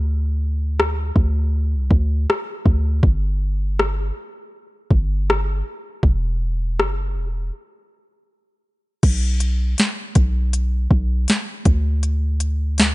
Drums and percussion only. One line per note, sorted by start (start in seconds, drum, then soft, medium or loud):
0.80 cross-stick loud
1.16 kick medium
1.91 kick medium
2.30 cross-stick loud
2.66 kick medium
3.03 kick loud
3.79 cross-stick loud
4.91 kick medium
5.30 cross-stick loud
6.03 kick loud
6.80 cross-stick loud
9.03 kick loud
9.03 closed hi-hat medium
9.03 crash loud
9.40 closed hi-hat medium
9.78 snare loud
9.78 closed hi-hat medium
10.15 kick loud
10.15 closed hi-hat medium
10.53 closed hi-hat medium
10.91 kick loud
11.28 snare loud
11.28 closed hi-hat medium
11.65 kick loud
11.65 closed hi-hat medium
12.03 closed hi-hat medium
12.40 closed hi-hat medium
12.78 snare loud
12.78 closed hi-hat medium